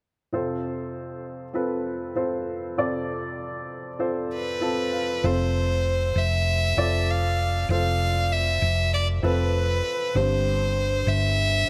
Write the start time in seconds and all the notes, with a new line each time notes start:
0.33 F2 C3 C4 F4 A4 C5
1.53 C4 F4 A4 B4
2.16 C4 F4 A4 C5
2.78 F2 C3 C4 F4 A4 D5
3.99 C4 F4 A4 C5
4.34 B4
4.61 C4 F4 A4 A5
4.92 F5
5.23 F1 C3 C4 F4 A4 C5
6.16 F1 E5
6.77 F1 C4 F4 A4 D5
7.11 F5
7.69 F1 C3 C4 F4 A4 C5 F5
8.33 E5
8.62 F1
8.94 D5
9.22 F1 C4 F4 A4 B4
10.15 G1 G2 D3 C4 D4 G4 C5
11.07 G1 E5